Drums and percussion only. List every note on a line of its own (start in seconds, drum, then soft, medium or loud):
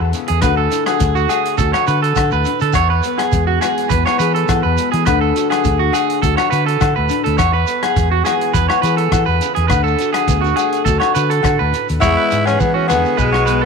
0.13 closed hi-hat medium
0.13 shekere medium
0.28 closed hi-hat medium
0.42 kick medium
0.42 cross-stick medium
0.42 closed hi-hat medium
0.42 low agogo medium
0.42 shekere medium
0.71 closed hi-hat medium
0.71 shekere medium
0.86 cross-stick medium
0.86 closed hi-hat soft
0.86 low agogo medium
1.00 kick medium
1.00 closed hi-hat medium
1.00 shekere medium
1.16 shekere soft
1.30 closed hi-hat soft
1.30 low agogo medium
1.30 shekere medium
1.45 closed hi-hat medium
1.45 shekere soft
1.58 kick medium
1.58 closed hi-hat soft
1.58 shekere medium
1.74 cross-stick medium
1.74 low agogo medium
1.74 shekere soft
1.87 closed hi-hat soft
1.87 shekere medium
2.04 closed hi-hat soft
2.16 kick medium
2.16 cross-stick medium
2.16 closed hi-hat medium
2.16 low agogo medium
2.16 shekere medium
2.31 shekere soft
2.45 closed hi-hat medium
2.45 shekere medium
2.60 closed hi-hat soft
2.60 shekere soft
2.73 kick medium
2.73 cross-stick medium
2.73 closed hi-hat soft
2.73 low agogo medium
2.73 shekere medium
3.03 closed hi-hat soft
3.03 shekere medium
3.18 cross-stick medium
3.18 closed hi-hat medium
3.18 low agogo medium
3.32 kick medium
3.32 closed hi-hat soft
3.32 shekere medium
3.62 cross-stick medium
3.62 closed hi-hat soft
3.62 low agogo medium
3.62 shekere medium
3.78 closed hi-hat medium
3.90 kick medium
3.90 closed hi-hat medium
3.90 shekere medium
4.06 cross-stick medium
4.06 low agogo medium
4.06 shekere soft
4.19 closed hi-hat soft
4.19 shekere medium
4.36 closed hi-hat soft
4.49 kick medium
4.49 cross-stick medium
4.49 closed hi-hat medium
4.49 low agogo medium
4.49 shekere medium
4.78 closed hi-hat medium
4.78 shekere medium
4.93 closed hi-hat medium
5.06 kick medium
5.06 cross-stick medium
5.06 closed hi-hat medium
5.06 low agogo medium
5.06 shekere medium
5.36 closed hi-hat medium
5.36 shekere medium
5.51 cross-stick medium
5.51 closed hi-hat medium
5.51 low agogo medium
5.65 kick medium
5.65 closed hi-hat medium
5.65 shekere medium
5.93 closed hi-hat medium
5.93 low agogo medium
5.93 shekere medium
6.10 closed hi-hat medium
6.23 kick medium
6.23 closed hi-hat soft
6.23 shekere medium
6.38 cross-stick medium
6.38 low agogo medium
6.38 shekere soft
6.52 closed hi-hat soft
6.52 shekere medium
6.68 closed hi-hat soft
6.81 kick medium
6.81 cross-stick medium
6.81 closed hi-hat soft
6.81 low agogo medium
6.81 shekere medium
7.09 closed hi-hat soft
7.09 shekere medium
7.26 closed hi-hat soft
7.38 kick medium
7.38 cross-stick medium
7.38 closed hi-hat medium
7.38 low agogo medium
7.38 shekere medium
7.67 closed hi-hat soft
7.67 shekere medium
7.83 cross-stick medium
7.83 closed hi-hat soft
7.83 low agogo medium
7.96 kick medium
7.96 closed hi-hat soft
7.96 shekere medium
8.26 cross-stick medium
8.26 closed hi-hat soft
8.26 low agogo medium
8.26 shekere medium
8.41 closed hi-hat soft
8.54 kick medium
8.54 closed hi-hat soft
8.54 shekere medium
8.70 cross-stick medium
8.70 low agogo medium
8.70 shekere soft
8.83 closed hi-hat soft
8.83 shekere medium
8.98 closed hi-hat medium
9.12 kick medium
9.12 cross-stick medium
9.12 closed hi-hat medium
9.12 low agogo medium
9.12 shekere medium
9.41 closed hi-hat soft
9.41 shekere medium
9.56 closed hi-hat soft
9.70 kick medium
9.70 cross-stick medium
9.70 closed hi-hat medium
9.70 low agogo medium
9.70 shekere medium
9.87 shekere soft
9.98 closed hi-hat medium
9.98 shekere medium
10.14 cross-stick medium
10.14 closed hi-hat medium
10.14 low agogo medium
10.14 shekere soft
10.28 kick medium
10.28 closed hi-hat medium
10.28 shekere medium
10.46 shekere soft
10.56 closed hi-hat medium
10.56 low agogo medium
10.56 shekere medium
10.72 closed hi-hat medium
10.72 shekere soft
10.86 kick medium
10.86 closed hi-hat medium
10.86 shekere medium
11.00 cross-stick medium
11.00 low agogo medium
11.00 shekere soft
11.15 closed hi-hat soft
11.15 shekere medium
11.30 closed hi-hat medium
11.30 shekere soft
11.43 kick medium
11.43 cross-stick medium
11.43 closed hi-hat medium
11.43 low agogo medium
11.43 shekere medium
11.74 closed hi-hat soft
11.74 shekere medium
11.89 closed hi-hat soft
11.89 shekere soft
12.00 kick medium
12.00 cross-stick medium
12.00 low agogo medium
12.00 shekere medium
12.31 closed hi-hat soft
12.31 shekere medium
12.45 cross-stick medium
12.45 low agogo medium
12.45 shekere soft
12.60 kick medium
12.60 shekere medium
12.88 cross-stick medium
12.88 closed hi-hat soft
12.88 low agogo medium
12.88 shekere medium
13.05 shekere soft
13.18 kick medium
13.18 shekere medium
13.33 cross-stick medium
13.33 low agogo medium
13.47 closed hi-hat soft
13.47 shekere medium